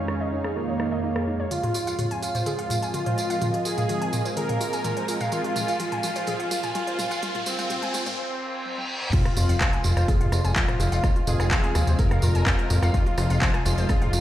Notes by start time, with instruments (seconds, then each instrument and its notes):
Already playing: analog synth pad F2 D#3 G#3 D#4 C#5, synth drone F2, supersaw synth C#4, ambient pad G#4 C#5 F5
0.08 synth arpeggio sound D#4, cross-stick
0.21 synth arpeggio sound D#5
0.32 synth arpeggio sound D#4
0.44 synth arpeggio sound G#4, cross-stick
0.56 supersaw synth A#3, synth arpeggio sound F4
0.68 synth arpeggio sound C#5
0.80 synth arpeggio sound D#4, cross-stick
0.92 synth arpeggio sound D#5
1.04 synth arpeggio sound D#4
1.16 synth arpeggio sound G#4, cross-stick
1.27 synth arpeggio sound D#4
1.40 synth arpeggio sound C#5
1.51 analog synth pad F3 G#3 C4 G#4, ambient pad F4, synth arpeggio sound F4, supersaw synth F4, closed hi-hat, mid tom, tambourine, riser
1.63 synth arpeggio sound F4, closed hi-hat, mid tom
1.74 analog synth pad F3 C4, synth arpeggio sound F4, open hi-hat, tambourine
1.79 ambient pad A#4
1.87 synth arpeggio sound F5, ambient pad G#5, closed hi-hat, tambourine
1.99 synth arpeggio sound F4, ambient pad D#5, closed hi-hat, mid tom, tambourine
2.11 synth arpeggio sound G#5, closed hi-hat
2.23 synth arpeggio sound F4, supersaw synth F4, open hi-hat, tambourine
2.35 synth arpeggio sound C5, closed hi-hat, mid tom, tambourine
2.46 synth arpeggio sound G#4, closed hi-hat, mid tom, tambourine
2.59 synth arpeggio sound F5, closed hi-hat
2.70 synth arpeggio sound F4, mid tom, open hi-hat, tambourine
2.83 synth arpeggio sound G#5, closed hi-hat, tambourine
2.94 synth arpeggio sound F4, supersaw synth F4, closed hi-hat, mid tom, tambourine
3.06 synth arpeggio sound C5, closed hi-hat, mid tom
3.18 synth arpeggio sound F4, open hi-hat, tambourine
3.30 synth arpeggio sound F5, closed hi-hat, tambourine
3.41 synth arpeggio sound F4, closed hi-hat, mid tom, tambourine
3.54 synth arpeggio sound F4, closed hi-hat
3.65 analog synth pad F3 C4 F4, synth arpeggio sound F4, supersaw synth G#4, open hi-hat, tambourine
3.78 synth arpeggio sound F5, closed hi-hat, mid tom, tambourine
3.89 synth arpeggio sound F4, closed hi-hat, mid tom, tambourine
4.02 synth arpeggio sound G#5, closed hi-hat
4.13 synth arpeggio sound F4, mid tom, open hi-hat, tambourine
4.25 synth arpeggio sound C5, closed hi-hat, tambourine
4.36 synth arpeggio sound G#4, supersaw synth A#4, closed hi-hat, mid tom, tambourine
4.49 synth arpeggio sound F5, closed hi-hat, mid tom
4.61 synth arpeggio sound F4, open hi-hat, tambourine
4.73 synth arpeggio sound G#5, closed hi-hat, tambourine
4.84 synth arpeggio sound F4, closed hi-hat, mid tom, tambourine
4.97 synth arpeggio sound C5, closed hi-hat
5.08 synth arpeggio sound F4, open hi-hat, tambourine
5.20 synth arpeggio sound F5, closed hi-hat, mid tom, tambourine
5.32 supersaw synth F4, synth arpeggio sound F4, closed hi-hat, mid tom, tambourine
5.44 synth arpeggio sound F4, closed hi-hat
5.56 analog synth pad F3 C4 F4, synth arpeggio sound F4, mid tom, open hi-hat, tambourine
5.68 synth arpeggio sound F5, closed hi-hat, tambourine
5.79 synth arpeggio sound F4, closed hi-hat, mid tom, tambourine
5.92 synth arpeggio sound G#5, closed hi-hat, mid tom
6.03 synth arpeggio sound F4, supersaw synth F4, open hi-hat, mid tom, tambourine
6.16 synth arpeggio sound C5, closed hi-hat, tambourine
6.27 synth arpeggio sound G#4, closed hi-hat, mid tom, tambourine
6.36 ambient pad F5, synth arpeggio sound F5, closed hi-hat
6.51 synth arpeggio sound F4, open hi-hat, mid tom, tambourine
6.63 synth arpeggio sound G#5, closed hi-hat, mid tom, tambourine
6.75 supersaw synth F4, synth arpeggio sound F4, closed hi-hat, mid tom, tambourine
6.87 synth arpeggio sound C5, closed hi-hat
6.99 synth arpeggio sound F4, mid tom, open hi-hat, tambourine
7.11 synth arpeggio sound F5, closed hi-hat, tambourine
7.23 synth arpeggio sound F4, closed hi-hat, mid tom, tambourine
7.35 synth arpeggio sound F4, closed hi-hat, mid tom
7.46 supersaw synth C4, synth arpeggio sound F4, open hi-hat, mid tom, tambourine
7.59 synth arpeggio sound F5, closed hi-hat, mid tom, tambourine
7.70 synth arpeggio sound F4, closed hi-hat, mid tom, tambourine
7.83 synth arpeggio sound G#5, closed hi-hat, mid tom
7.94 synth arpeggio sound F4, open hi-hat, mid tom, tambourine
8.06 synth arpeggio sound C5, closed hi-hat, mid tom, tambourine
8.18 supersaw synth C4, reverse cymbal
8.65 high tom
8.78 high tom
9.02 mid tom
9.13 analog synth bass F1, analog synth pad C3 F3 G#3 F4, supersaw synth F4, synth arpeggio sound F4, kick, closed hi-hat, crash, tambourine, sub drop
9.25 synth arpeggio sound F4, cross-stick, closed hi-hat
9.37 analog synth bass F1, analog synth pad F3 C4 F4, synth arpeggio sound F4, ambient pad D#5, open hi-hat, tambourine
9.49 analog synth bass F1, synth arpeggio sound F5, closed hi-hat, tambourine
9.61 analog synth bass F2, synth arpeggio sound F4, kick, cross-stick, clap, closed hi-hat, tambourine
9.73 synth arpeggio sound G#5, closed hi-hat
9.84 analog synth bass F1, supersaw synth F4, synth arpeggio sound F4, open hi-hat, tambourine
9.97 analog synth bass F1, synth arpeggio sound C5, cross-stick, closed hi-hat, tambourine
10.08 analog synth bass F1, synth arpeggio sound G#4, kick, closed hi-hat, tambourine
10.21 analog synth bass F1, synth arpeggio sound F5, closed hi-hat, mid tom
10.32 analog synth bass F1, synth arpeggio sound F4, cross-stick, open hi-hat, tambourine
10.45 analog synth bass F1, synth arpeggio sound G#5, closed hi-hat, tambourine
10.56 analog synth bass F2, supersaw synth F4, synth arpeggio sound F4, kick, clap, closed hi-hat, tambourine
10.68 synth arpeggio sound C5, cross-stick, closed hi-hat, mid tom
10.80 analog synth bass F1, synth arpeggio sound F4, open hi-hat, tambourine
10.92 analog synth bass F1, synth arpeggio sound F5, closed hi-hat, tambourine
11.04 analog synth bass F1, synth arpeggio sound F4, kick, cross-stick, closed hi-hat, tambourine
11.16 synth arpeggio sound F4, closed hi-hat
11.27 analog synth bass F1, analog synth pad F3 C4 F4, synth arpeggio sound F4, supersaw synth G#4, mid tom, open hi-hat, tambourine
11.40 analog synth bass F1, synth arpeggio sound F5, cross-stick, closed hi-hat, tambourine
11.51 analog synth bass F2, synth arpeggio sound F4, kick, clap, closed hi-hat, tambourine
11.64 synth arpeggio sound G#5, closed hi-hat
11.75 analog synth bass D#1, synth arpeggio sound F4, cross-stick, open hi-hat, tambourine
11.87 analog synth bass D#1, synth arpeggio sound C5, closed hi-hat, tambourine
11.99 analog synth bass F1, synth arpeggio sound G#4, supersaw synth A#4, kick, closed hi-hat, tambourine
12.11 analog synth bass F1, synth arpeggio sound F5, cross-stick, closed hi-hat
12.22 analog synth bass F1, synth arpeggio sound F4, mid tom, open hi-hat, tambourine
12.35 analog synth bass F1, synth arpeggio sound G#5, closed hi-hat, tambourine
12.46 analog synth bass F1, synth arpeggio sound F4, kick, cross-stick, clap, closed hi-hat, tambourine
12.59 synth arpeggio sound C5, closed hi-hat
12.70 analog synth bass F1, analog synth pad F3 C4 F4, synth arpeggio sound F4, mid tom, open hi-hat, tambourine
12.83 analog synth bass F1, synth arpeggio sound F5, cross-stick, closed hi-hat, tambourine
12.94 analog synth bass F1, analog synth pad D#4, supersaw synth F4, synth arpeggio sound F4, kick, closed hi-hat, tambourine
13.06 synth arpeggio sound F4, closed hi-hat
13.18 analog synth bass F1, analog synth pad F3 C4 F4, synth arpeggio sound F4, cross-stick, open hi-hat, tambourine
13.30 analog synth bass F1, synth arpeggio sound F5, closed hi-hat, tambourine
13.42 analog synth bass F2, synth arpeggio sound F4, kick, clap, closed hi-hat, tambourine
13.54 synth arpeggio sound G#5, cross-stick, closed hi-hat
13.65 analog synth bass F1, supersaw synth F4, synth arpeggio sound F4, open hi-hat, tambourine
13.78 analog synth bass F1, synth arpeggio sound C5, closed hi-hat, tambourine
13.89 analog synth bass F1, synth arpeggio sound G#4, kick, cross-stick, closed hi-hat, tambourine
14.02 analog synth bass F1, synth arpeggio sound F5, closed hi-hat, mid tom
14.13 analog synth bass F1, synth arpeggio sound F4, open hi-hat, tambourine